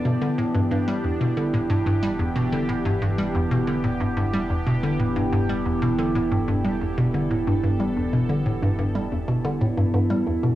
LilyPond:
<<
  \new Staff \with { instrumentName = "Synth texture" } { \time 4/4 \key e \minor \tempo 4 = 91 <d' g'>1~ | <d' g'>1~ | <d' g'>1~ | <d' g'>1 | }
  \new Staff \with { instrumentName = "Ambient pad" } { \time 4/4 \key e \minor << { g'1~ | g'1 | a'1~ | a'1 | } \\ { <e b e'>1~ | <e b e'>1~ | <e b e'>1~ | <e b e'>1 | } >> }
  \new Staff \with { instrumentName = "Synth arpeggio sound" } { \clef bass \time 4/4 \key e \minor b,16 d16 a,16 g,16 g,16 g16 e,16 b,16 d16 a,16 g,16 g,16 g16 e,16 b,16 d16 | a,16 g,16 g,16 g16 e,16 b,16 d16 a,16 g,16 g,16 g16 e,16 b,16 d16 a,16 g,16 | g,16 g16 e,16 b,16 d16 a,16 g,16 g,16 g16 e,16 b,16 d16 a,16 g,16 g,16 g16 | e,16 b,16 d16 a,16 g,16 g,16 g16 e,16 b,16 d16 a,16 g,16 g,16 g16 e,16 b,16 | }
  \new Staff \with { instrumentName = "Analog synth bass" } { \clef bass \time 4/4 \key e \minor e,,1~ | e,,1~ | e,,1~ | e,,1 | }
>>